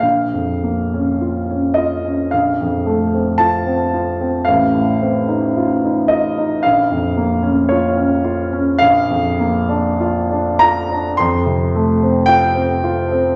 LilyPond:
\new Staff \with { instrumentName = "Grand piano" } { \time 4/4 \key bes \minor \tempo 4 = 55 << { f''4. ees''8 f''4 a''4 | f''4. ees''8 f''4 des''8 r8 | \key bes \major f''4. bes''8 c'''4 g''4 | } \\ { bes,,16 f,16 bes16 des'16 f'16 des'16 f'16 des'16 bes,,16 f,16 a16 c'16 f'16 c'16 f'16 c'16 | a,,16 a,16 c'16 ees'16 f'16 ees'16 f'16 ees'16 bes,,16 f,16 bes16 des'16 f'16 des'16 f'16 des'16 | bes,,16 f,16 bes16 d'16 f'16 d'16 f'16 d'16 f,16 c16 a16 c'16 f'16 c'16 f'16 c'16 | } >> }